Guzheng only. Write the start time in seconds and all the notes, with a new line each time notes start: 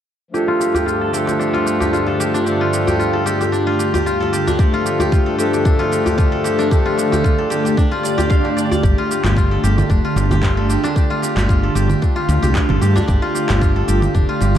0.34 G4
0.48 F4
0.60 G4
0.74 G4
0.86 F4
1.01 A4
1.13 G4
1.27 G4
1.39 D4
1.53 F4
1.66 G4
1.80 G4
1.93 F4
2.07 A4
2.20 G4
2.34 D4
2.46 G4
2.61 F4
2.73 G4
2.87 G4
2.99 F4
3.13 A4
3.26 G4
3.41 G4
3.52 D4
3.67 F4
3.79 G4
3.94 G4
4.06 F4
4.20 A4
4.33 G4
4.47 D4
4.59 G4
4.74 F4
4.86 G4
5.00 G4
5.12 F4
5.26 A4
5.38 G4
5.53 G4
5.65 D4
5.79 F4
5.92 G4
6.06 G4
6.18 F4
6.32 A4
6.44 G4
6.59 D4
6.71 G4
6.86 F4
6.97 G4
7.12 G4
7.24 F4
7.38 A4
7.50 G4
7.65 G4
7.77 D4
7.91 F4
8.03 D5
8.18 G4
8.30 F5
8.44 G4
8.57 D5
8.71 D5
8.84 G4
8.98 F4
9.11 G4
9.24 G4
9.37 F4
9.51 A4
9.64 G4
9.78 G4
9.90 D4
10.05 F4
10.17 G4
10.31 G4
10.43 F4
10.57 A4
10.70 G4
10.84 D4
10.96 G4
11.10 F4
11.22 G4
11.37 G4
11.49 F4
11.63 A4
11.75 G4
11.89 G4
12.02 D4
12.16 F4
12.29 G4
12.42 G4
12.55 F4
12.70 A4
12.81 G4
12.96 D4
13.08 G4
13.22 F4
13.35 G4
13.49 G4
13.61 F4
13.76 A4
13.88 G4
14.02 G4
14.14 D4
14.29 F4
14.41 G4